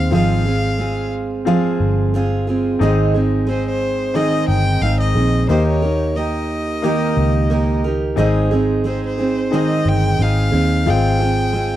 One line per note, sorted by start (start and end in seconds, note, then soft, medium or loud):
0.00 0.13 D#2 medium
0.00 0.12 G#3 soft
0.00 0.14 G#3 medium
0.00 0.12 C4 soft
0.00 0.12 D#4 soft
0.00 0.14 D#4 medium
0.00 0.12 G#4 medium
0.00 0.11 C5 soft
0.00 0.14 D#5 medium
0.11 1.76 G#1 medium
0.11 0.45 G#2 medium
0.11 0.46 F3 medium
0.11 0.46 G#3 medium
0.11 0.94 C4 medium
0.11 0.46 C4 medium
0.11 0.94 F4 medium
0.11 0.45 F4 medium
0.11 0.94 G#4 medium
0.11 0.43 G#4 medium
0.11 0.95 F5 medium
0.11 1.10 F5 medium
0.45 0.77 G#3 soft
0.45 0.78 C4 soft
0.45 0.79 F4 soft
0.45 0.79 G#4 soft
0.78 1.46 G#3 medium
0.78 1.47 C4 medium
0.78 1.47 F4 medium
0.78 1.48 G#4 medium
1.45 2.14 F3 medium
1.45 2.13 G#3 medium
1.45 2.28 C4 medium
1.45 2.14 C4 medium
1.45 2.29 F4 medium
1.45 2.14 F4 medium
1.45 2.29 G#4 medium
1.45 2.17 G#4 medium
1.45 2.29 F5 medium
1.80 2.77 G1 medium
2.14 2.47 G#3 medium
2.14 2.48 C4 medium
2.14 2.47 F4 medium
2.14 2.46 G#4 medium
2.47 2.81 G#3 soft
2.47 2.82 C4 soft
2.47 2.81 F4 soft
2.47 2.81 G#4 medium
2.79 4.44 G#1 loud
2.79 3.14 G#2 medium
2.79 3.15 D#3 medium
2.79 3.15 G#3 medium
2.79 3.62 C4 medium
2.79 3.15 C4 medium
2.79 3.63 D#4 medium
2.79 3.14 D#4 medium
2.79 3.63 G#4 medium
2.79 3.63 D#5 medium
2.83 3.13 G#4 medium
3.14 3.45 G#3 soft
3.14 3.47 C4 soft
3.14 3.48 D#4 soft
3.14 3.48 G#4 medium
3.47 4.14 G#3 medium
3.47 4.15 C4 medium
3.47 4.16 D#4 medium
3.47 4.15 G#4 medium
3.47 3.65 C5 medium
3.67 4.16 C5 medium
4.14 5.49 D#3 medium
4.14 4.80 G#3 medium
4.14 4.97 C4 medium
4.14 4.82 C4 medium
4.14 4.97 D#4 medium
4.14 4.83 D#4 medium
4.14 4.97 G#4 medium
4.14 4.83 G#4 medium
4.14 4.48 D#5 medium
4.14 4.98 D#5 medium
4.48 4.79 G1 medium
4.48 4.83 G5 loud
4.81 5.12 G#1 loud
4.81 5.15 G#3 medium
4.81 5.16 C4 medium
4.81 5.15 D#4 medium
4.81 5.14 G#4 medium
4.81 4.99 F5 loud
5.00 5.45 D#5 medium
5.15 5.46 A#1 loud
5.15 5.49 G#3 soft
5.15 5.50 C4 soft
5.15 5.49 D#4 soft
5.15 5.49 G#4 soft
5.48 7.13 D#2 medium
5.48 5.82 D#3 medium
5.48 6.31 A#3 medium
5.48 5.83 A#3 medium
5.48 6.31 D#4 medium
5.48 5.83 D#4 medium
5.48 6.32 G4 medium
5.48 5.83 G4 medium
5.48 5.81 A#4 medium
5.48 5.66 C5 medium
5.48 6.32 D#5 medium
5.67 6.17 C#5 medium
5.82 6.16 D#4 soft
5.82 6.17 G4 soft
5.82 6.16 A#4 medium
6.16 6.83 A#3 medium
6.16 6.84 D#4 medium
6.16 6.84 G4 medium
6.16 6.84 A#4 medium
6.16 7.84 D#5 medium
6.82 8.17 D#3 medium
6.82 7.65 A#3 medium
6.82 7.49 A#3 medium
6.82 7.65 D#4 medium
6.82 7.51 D#4 medium
6.82 7.66 G4 medium
6.82 7.51 G4 medium
6.82 7.52 A#4 medium
6.82 7.66 D#5 medium
7.17 8.14 C#2 medium
7.50 7.84 A#3 medium
7.50 7.84 D#4 medium
7.50 7.85 G4 medium
7.50 7.83 A#4 medium
7.84 8.18 D#4 soft
7.84 8.19 G4 medium
7.84 8.18 A#4 medium
8.16 9.81 G#1 medium
8.16 8.51 G#2 medium
8.16 8.51 D#3 medium
8.16 8.52 G#3 medium
8.16 8.99 C4 medium
8.16 8.52 C4 medium
8.16 8.99 D#4 medium
8.16 8.51 D#4 medium
8.16 9.00 G#4 medium
8.16 8.50 G#4 medium
8.16 9.00 D#5 medium
8.51 8.83 G#3 soft
8.51 8.84 C4 soft
8.51 8.85 D#4 medium
8.51 8.85 G#4 medium
8.84 9.18 G#3 medium
8.84 9.19 C4 medium
8.84 9.18 D#4 medium
8.84 9.17 G#4 medium
8.84 9.03 C5 medium
9.06 9.56 C5 medium
9.18 9.52 G#3 soft
9.18 9.52 C4 soft
9.18 9.52 D#4 soft
9.18 9.52 G#4 medium
9.51 10.20 D#3 medium
9.51 10.18 G#3 medium
9.51 10.34 C4 medium
9.51 10.19 C4 medium
9.51 10.34 D#4 medium
9.51 10.20 D#4 medium
9.51 10.35 G#4 medium
9.51 10.21 G#4 medium
9.51 10.35 C5 medium
9.51 9.90 D#5 medium
9.85 10.17 G1 medium
9.85 10.24 G5 loud
10.19 10.50 G#1 medium
10.19 10.53 G#3 medium
10.19 10.53 C4 medium
10.19 10.51 D#4 medium
10.19 10.50 G#4 medium
10.19 10.91 F5 loud
10.52 10.88 D#2 medium
10.52 10.85 G#3 soft
10.52 10.86 C4 soft
10.52 10.87 D#4 soft
10.52 10.86 G#4 medium
10.86 11.76 G#1 medium
10.86 11.20 G#3 medium
10.86 11.69 C4 medium
10.86 11.21 C4 medium
10.86 11.69 F4 medium
10.86 11.20 F4 medium
10.86 11.70 G#4 medium
10.86 11.18 G#4 medium
10.86 11.70 F5 medium
10.86 11.76 G5 loud
11.19 11.53 C4 soft
11.19 11.54 F4 soft
11.19 11.54 G#4 medium
11.53 11.76 G#3 medium
11.53 11.76 C4 medium
11.53 11.76 F4 medium
11.53 11.76 G#4 medium